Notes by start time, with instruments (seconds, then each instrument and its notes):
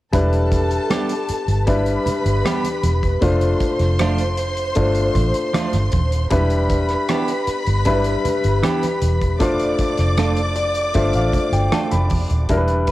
0.12 fingered electric bass E1, grand piano G3 D4 E4 B4, string section A4 A5, kick, closed hi-hat, muted conga
0.33 closed hi-hat
0.52 kick, closed hi-hat, muted conga
0.71 closed hi-hat
0.90 clean electric guitar G3 B3 D4 G4, cross-stick, closed hi-hat, high conga
1.09 closed hi-hat
1.29 muted fingered electric bass stroke, closed hi-hat
1.48 fingered electric bass G1, closed hi-hat
1.67 grand piano G3 D4 E4 B4, string section B4 B5, kick, closed hi-hat, muted conga
1.86 closed hi-hat
2.06 muted fingered electric bass stroke, closed hi-hat, muted conga, low conga
2.26 fingered electric bass G1, closed hi-hat
2.45 clean electric guitar G3 B3 D4 G4, cross-stick, closed hi-hat, high conga
2.64 closed hi-hat, high conga
2.83 fingered electric bass E1, closed hi-hat, high conga
3.03 kick, closed hi-hat
3.21 fingered electric bass F1, grand piano A3 D4 F4 C5, string section C5 C6, kick, closed hi-hat, muted conga
3.41 closed hi-hat
3.60 kick, closed hi-hat
3.80 fingered electric bass F1, cross-stick, closed hi-hat
3.99 clean electric guitar F3 A3 D4 F4, cross-stick, closed hi-hat, high conga
4.18 closed hi-hat
4.37 closed hi-hat
4.57 closed hi-hat
4.75 fingered electric bass G1, grand piano A3 D4 F4 C5, kick, closed hi-hat, muted conga
4.95 closed hi-hat
5.15 fingered electric bass A1, kick, closed hi-hat, muted conga, low conga
5.34 closed hi-hat
5.54 clean electric guitar F3 A3 D4 F4, cross-stick, closed hi-hat, high conga
5.73 fingered electric bass G1, cross-stick, closed hi-hat, high conga
5.92 fingered electric bass D#1, kick, closed hi-hat, high conga
6.12 closed hi-hat
6.30 fingered electric bass E1, grand piano G3 D4 E4 B4, string section B4 B5, kick, closed hi-hat, muted conga
6.50 closed hi-hat
6.70 kick, closed hi-hat, muted conga
6.89 cross-stick, closed hi-hat
7.09 clean electric guitar E3 B3 D4 G4, cross-stick, closed hi-hat, high conga
7.28 closed hi-hat
7.47 muted fingered electric bass stroke, closed hi-hat
7.66 fingered electric bass G1, closed hi-hat
7.85 grand piano G3 D4 E4 B4, kick, closed hi-hat, muted conga
8.04 closed hi-hat
8.25 muted fingered electric bass stroke, closed hi-hat, muted conga, low conga
8.44 fingered electric bass G1, closed hi-hat
8.63 clean electric guitar E3 B3 D4 G4, cross-stick, closed hi-hat, high conga
8.83 cross-stick, closed hi-hat, high conga
9.02 fingered electric bass E1, closed hi-hat, high conga
9.21 kick, closed hi-hat
9.39 fingered electric bass F1, grand piano A3 D4 F4 C5, string section D5 D6, kick, closed hi-hat, muted conga
9.60 closed hi-hat
9.79 kick, closed hi-hat, muted conga
9.98 fingered electric bass F1, cross-stick, closed hi-hat
10.17 clean electric guitar A3 D4 F4 A4, cross-stick, closed hi-hat, high conga
10.37 closed hi-hat
10.56 grand piano D5, closed hi-hat
10.75 closed hi-hat
10.94 fingered electric bass G1, grand piano A3 D4 F4 C5 E5, kick, closed hi-hat, muted conga
11.13 fingered electric bass A1, grand piano F5, closed hi-hat
11.33 kick, closed hi-hat, muted conga, low conga
11.52 fingered electric bass G1, grand piano G5, closed hi-hat
11.72 clean electric guitar A3 D4 F4 A4, grand piano A5, cross-stick, closed hi-hat, high conga
11.91 fingered electric bass F1, grand piano B5, cross-stick, closed hi-hat, high conga
12.10 fingered electric bass E1, kick, open hi-hat, high conga
12.30 fingered electric bass D#1, closed hi-hat
12.49 fingered electric bass E1, grand piano G3 D4 E4 A#4, kick, closed hi-hat, muted conga
12.57 grand piano B4
12.68 closed hi-hat
12.87 kick, closed hi-hat